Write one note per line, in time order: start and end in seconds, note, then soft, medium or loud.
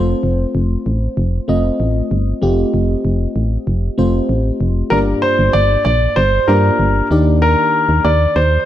0.00 0.15 F1 loud
0.00 0.85 A3 medium
0.00 0.82 C4 medium
0.00 0.83 F4 medium
0.00 0.83 C5 loud
0.23 0.46 F1 loud
0.55 0.77 F1 loud
0.86 1.09 A1 medium
1.17 1.40 F1 loud
1.48 1.71 F1 medium
1.48 2.16 A3 medium
1.48 2.16 C4 medium
1.48 2.16 F4 medium
1.48 2.17 D#5 medium
1.80 2.02 A1 medium
2.11 2.34 G1 medium
2.42 2.65 F1 loud
2.42 3.32 A3 medium
2.42 3.33 C4 medium
2.42 3.33 F4 medium
2.42 3.33 G4 loud
2.74 2.96 F1 loud
3.05 3.27 F1 loud
3.36 3.58 A1 medium
3.67 3.90 F1 medium
3.98 4.21 F1 loud
3.98 4.66 A3 medium
3.98 4.66 C4 medium
3.98 4.66 F4 medium
3.98 4.66 C5 medium
4.29 4.52 A1 medium
4.61 4.83 F1 loud
4.90 5.14 G1 loud
4.90 5.82 G2 medium
4.90 5.82 A#3 medium
4.90 5.82 D4 medium
4.90 5.83 F4 medium
4.90 5.83 G4 medium
4.90 4.97 A#4 medium
4.90 5.83 D5 medium
5.22 5.52 C5 loud
5.39 5.50 G1 loud
5.53 5.77 G1 loud
5.53 5.83 D5 loud
5.85 6.08 A#1 medium
5.85 6.17 D5 loud
6.16 6.39 G1 loud
6.16 6.49 C5 medium
6.48 6.71 G2 loud
6.48 7.09 A#3 medium
6.48 7.10 D4 medium
6.48 7.11 F4 medium
6.48 7.10 G4 medium
6.48 7.06 A#4 medium
6.48 7.10 D5 medium
6.79 7.02 G1 loud
7.11 7.56 D#2 loud
7.11 8.01 D#3 medium
7.11 8.11 A#3 medium
7.11 8.11 D4 medium
7.11 8.11 D#4 medium
7.11 8.11 G4 medium
7.11 8.11 D5 medium
7.42 8.06 A#4 medium
7.89 8.00 D#2 medium
8.04 8.27 D#2 loud
8.04 8.37 D5 medium
8.36 8.58 D#2 medium
8.36 8.65 C5 medium